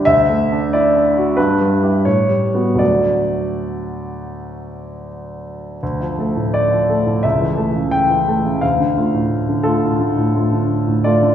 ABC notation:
X:1
M:4/4
L:1/16
Q:1/4=85
K:D
V:1 name="Grand piano"
e4 d4 B4 c4 | d12 z4 | [K:Dm] z4 d4 e4 g4 | f6 A8 d2 |]
V:2 name="Grand piano" clef=bass
(3D,,2 A,2 D2 (3E2 D2 F2 (3G,,2 G,2 [EG]2 (3A,,2 G,2 [B,F]2 | [D,,F,A,F]16 | [K:Dm] D,, F, [A,A] A,,2 F, [A,A] A,, ^C,, E, [A,A] ^C,2 E, [A,A] C, | D,, D, [A,F] A,,2 D, [A,F] A,, D, A,, [A,F] D,2 A,, [A,F] D, |]